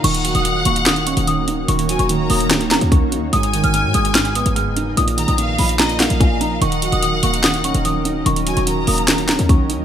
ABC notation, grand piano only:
X:1
M:4/4
L:1/8
Q:1/4=146
K:Ebm
V:1 name="Grand piano" clef=bass
E, G, E, B, E, D E, E | E, G, E, B, E, D E, E | A,, E, A,, A, A,, C A,, E | B,, E, B,, F, B,, B, B,, E |
E, G, E, B, E, D E, E | E, G, E, B, E, D E, E |]